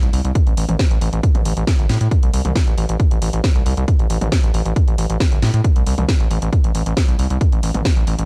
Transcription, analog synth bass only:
0.02 C2
0.13 C2
0.24 C2
0.46 A1
0.57 A1
0.69 A1
0.91 A1
1.01 A1
1.13 A1
1.35 A1
1.45 A1
1.57 A1
1.79 G1
1.89 A2
2.01 A2
2.23 C2
2.34 C2
2.45 C2
2.67 A1
2.78 A1
2.89 A1
3.11 A1
3.22 A1
3.33 A1
3.55 C2
3.66 C2
3.77 C2
3.99 A1
4.10 A1
4.21 A1
4.43 A1
4.54 A1
4.66 A1
4.88 A1
4.98 A1
5.10 A1
5.32 G1
5.42 A2
5.54 A2
5.76 C2
5.87 C2
5.98 C2
6.20 A1
6.31 A1
6.42 A1
6.64 A1
6.75 A1
6.86 A1
7.08 C2
7.19 C2
7.30 C2
7.52 A1
7.63 A1
7.74 A1
7.96 A1
8.07 A1
8.19 A1

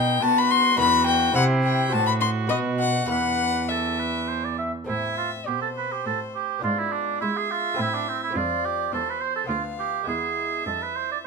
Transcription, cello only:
Already playing: B2
0.22 B3
0.78 E2
1.35 C3
1.93 A2
2.49 B2
3.09 E2
4.89 A2
5.47 B2
6.06 A2
6.64 G#2
7.21 G#3
7.79 A2
8.36 F2
8.93 E2
9.49 D2
10.07 E2
10.66 F2

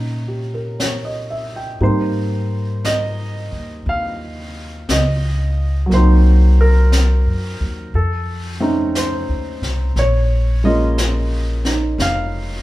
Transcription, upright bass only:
Already playing: A#2
1.80 G#2
3.52 D#2
3.86 D#2
4.89 C#2
5.91 C2
7.26 F#2
7.61 D#2
7.94 F2
9.29 D#2
9.62 C2
9.96 A#1
11.98 F1

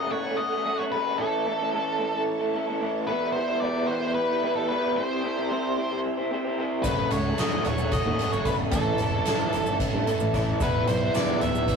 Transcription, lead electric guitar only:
Already playing: D#5
0.11 C#5
0.37 D#5
0.78 C#5
0.92 B4
1.18 A4
3.07 B4
3.32 C5
3.60 D5
3.87 C5
4.14 B4
4.56 A4
4.68 B4
4.96 C5
6.83 B4
7.11 C#5
7.39 D#5
7.67 C#5
7.93 D#5
8.33 C#5
8.45 B4
8.72 A4
10.63 B4
10.88 C5
11.15 D5
11.42 E5

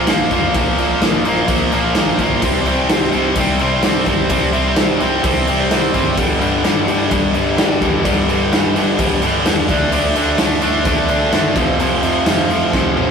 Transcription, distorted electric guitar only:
0.08 A#2 F3 A#3
0.32 A#2 F3 A#3
0.56 A#2 F3 A#3
0.79 A#2 F3 A#3
1.01 A#2 F3 A#3
1.25 A#2 F3 A#3
1.48 A#2 F3 A#3
1.73 A#2 F3 A#3
1.96 A#2 F3 A#3
2.20 A#2 F3 A#3
2.43 C3 G3 C4
2.67 C3 G3 C4
2.90 C3 G3 C4
3.13 C3 G3 C4
3.37 C3 G3 C4
3.60 C3 G3 C4
3.83 C3 G3 C4
4.07 C3 G3 C4
4.30 C3 G3 C4
4.53 C3 G3 C4
4.76 C3 G3 C4
5.00 C3 G3 C4
5.24 C3 G3 C4
5.47 C3 G3 C4
5.71 C3 G3 C4
5.94 C3 G3 C4
6.17 G2 D3 G3
6.41 G2 D3 G3
6.64 G2 D3 G3
6.87 G2 D3 G3
7.10 G2 D3 G3
7.34 G2 D3 G3
7.58 G2 D3 G3
7.80 G2 D3 G3
8.04 G2 D3 G3
8.29 G2 D3 G3
8.53 G2 D3 G3
8.76 G2 D3 G3
8.99 G2 D3 G3
9.22 G2 D3 G3
9.46 G2 D3 G3
9.69 D3 A3 D4
9.92 D3 A3 D4
10.15 D3 A3 D4
10.39 D3 A3 D4
10.62 D3 A3 D4
10.86 D3 A3 D4
11.09 D3 A3 D4
11.32 D3 A3 D4
11.55 F2 C3 F3
11.79 F2 C3 F3
12.02 F2 C3 F3
12.26 F2 C3 F3
12.50 F2 C3 F3
12.73 F2 C3 F3
12.96 F2 C3 F3

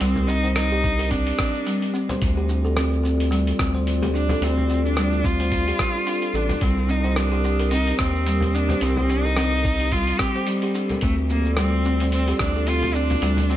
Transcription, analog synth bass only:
0.01 C2
2.22 D2
3.60 D2
4.42 D2
6.34 A1
6.62 C2
8.00 D#2
8.82 C2
11.03 D2
12.40 D2
13.22 D2

